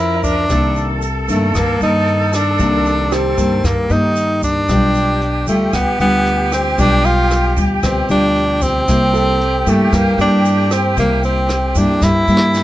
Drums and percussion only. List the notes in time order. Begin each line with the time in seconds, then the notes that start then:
0.23 kick, closed hi-hat, shaker
0.50 kick, cross-stick, closed hi-hat, shaker
0.76 closed hi-hat, shaker
1.02 closed hi-hat, shaker
1.29 closed hi-hat, shaker
1.55 kick, cross-stick, closed hi-hat, shaker
1.81 closed hi-hat, shaker
2.07 closed hi-hat
2.33 cross-stick, closed hi-hat, shaker
2.59 kick, closed hi-hat, shaker
2.86 closed hi-hat, shaker
3.12 cross-stick, closed hi-hat, shaker
3.38 kick, closed hi-hat, shaker
3.64 kick, cross-stick, closed hi-hat, shaker
3.90 closed hi-hat, shaker
4.16 closed hi-hat, shaker
4.43 kick, closed hi-hat, shaker
4.69 kick, cross-stick, closed hi-hat, shaker
4.95 closed hi-hat, shaker
5.21 closed hi-hat
5.47 closed hi-hat, shaker
5.73 kick, cross-stick, closed hi-hat, shaker
5.99 closed hi-hat, shaker
6.26 closed hi-hat
6.52 cross-stick, closed hi-hat, shaker
6.78 kick, closed hi-hat, shaker
7.04 closed hi-hat, shaker
7.31 cross-stick, closed hi-hat, shaker
7.57 kick, closed hi-hat, shaker
7.83 kick, cross-stick, closed hi-hat, shaker
8.09 closed hi-hat, shaker
8.36 closed hi-hat
8.61 kick, closed hi-hat, shaker
8.88 kick, cross-stick, closed hi-hat, shaker
9.15 closed hi-hat, shaker
9.41 closed hi-hat
9.67 closed hi-hat, shaker
9.93 kick, cross-stick, closed hi-hat, shaker
10.19 closed hi-hat, shaker
10.45 closed hi-hat, shaker
10.71 cross-stick, closed hi-hat, shaker
10.97 kick, closed hi-hat, shaker
11.23 closed hi-hat, shaker
11.49 cross-stick, closed hi-hat, shaker
11.75 kick, closed hi-hat, shaker
12.02 kick, snare, shaker
12.28 shaker
12.37 snare
12.54 snare, shaker